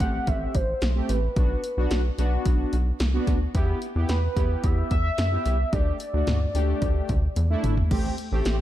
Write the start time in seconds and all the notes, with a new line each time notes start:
0.00 A1 A3 C4 G4 F#5, kick, closed hi-hat
0.27 A1 E5, kick, closed hi-hat
0.55 A1 C5, kick, closed hi-hat
0.82 B1, snare, closed hi-hat
0.96 A3 C4 G4
1.09 A1 B4, closed hi-hat
1.36 B1 B3 D4 F#4, kick, closed hi-hat
1.64 closed hi-hat
1.77 B1 B3 D4 F#4
1.91 B1, snare, closed hi-hat
2.18 B1 B3 D4 F#4, closed hi-hat
2.45 B1, kick, closed hi-hat
2.73 B1, closed hi-hat
3.00 C2, snare, closed hi-hat
3.14 B3 D4 F#4
3.27 D2, kick, closed hi-hat
3.55 E2 B3 E4 G4, kick, closed hi-hat
3.82 closed hi-hat
3.96 E2 B3 E4 G4
4.09 E2 B4, snare, closed hi-hat
4.36 E2 B3 E4 G4, kick, closed hi-hat
4.64 E2 E5, kick, closed hi-hat
4.91 E2 E5, kick, closed hi-hat
5.18 F#2, snare, closed hi-hat
5.32 B3 E4 G4
5.46 C2, closed hi-hat
5.73 D2 A3 D4 G4 D5, kick, closed hi-hat
6.00 closed hi-hat
6.14 D2 A3 D4 F#4
6.27 D2, snare, closed hi-hat, mid tom
6.55 D2 A3 D4 G4, closed hi-hat
6.82 D2, kick, closed hi-hat
7.09 D2, kick, closed hi-hat, mid tom
7.36 E2, closed hi-hat, high tom
7.50 A3 D4 E4
7.64 G1, closed hi-hat, mid tom
7.77 floor tom
7.91 A1 A3 C4 G4, kick, crash
8.18 closed hi-hat
8.32 A1 A3 C4 G4
8.45 A1, snare, closed hi-hat